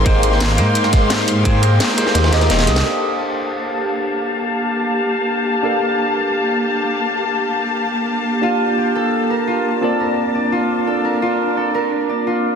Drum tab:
RD |x-x-x-x-x-x-x-x-|x-x-x-x-xxxxx-x-|----------------|----------------|
HH |x-x-x-x-x-x-x-o-|x-x-x-x-x-xxx-o-|----------------|----------------|
SD |---oo-o--oo-o---|----oooooooooooo|----------------|----------------|
BD |o---------o-----|o---------------|----------------|----------------|

RD |----------------|----------------|----------------|----------------|
HH |----------------|----------------|----------------|----------------|
SD |----------------|----------------|----------------|----------------|
BD |----------------|----------------|----------------|----------------|

RD |----------------|
HH |----------------|
SD |----------------|
BD |----------------|